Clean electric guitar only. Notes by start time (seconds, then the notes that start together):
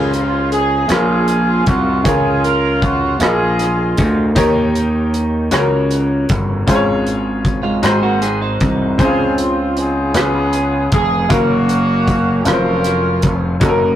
7.63 G#3 F4
7.83 C4 G#4
8.03 A#3 F#4
8.22 C4 G#4
8.41 D#4 C5